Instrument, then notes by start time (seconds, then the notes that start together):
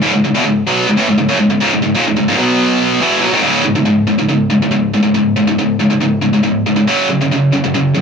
distorted electric guitar
0.02 C#2 G#2
0.13 C#2 G#2
0.24 C#2 G#2
0.34 E2 B2
0.44 C#2 G#2
0.67 B2 F#3 B3
0.87 C#2 G#2
0.97 A2 E3
1.09 C#2 G#2
1.18 C#2 G#2
1.29 F#2 C#3
1.40 C#2 G#2
1.50 C#2 G#2
1.61 C#2 G#2
1.74 C#2 G#2
1.83 C#2 G#2
1.95 D#2 A#2
2.07 C#2 G#2
2.17 C#2 G#2
2.28 C#2 G#2
2.37 B2 F#3 B3
3.01 E2 B2 E3
3.22 B2 F#3
3.32 G#2 D#3
3.43 C#2 G#2 C#3
3.64 C#2 G#2
3.75 C#2 G#2
3.85 C#2 G#2
4.07 C#2 G#2
4.18 C#2 G#2
4.29 C#2 G#2
4.50 C#2 G#2
4.62 C#2 G#2
4.71 C#2 G#2
4.94 C#2 G#2
5.03 C#2 G#2
5.14 C#2 G#2
5.36 C#2 G#2
5.47 C#2 G#2
5.58 C#2 G#2
5.79 C#2 G#2
5.90 C#2 G#2
6.01 C#2 G#2
6.21 C#2 G#2
6.33 C#2 G#2
6.43 C#2 G#2
6.66 C#2 G#2
6.76 C#2 G#2
6.87 F#2 C#3 F#3
7.09 F#2 C#3
7.21 F#2 C#3
7.31 F#2 C#3
7.53 F#2 C#3
7.64 F#2 C#3
7.74 F#2 C#3
7.95 F#2 C#3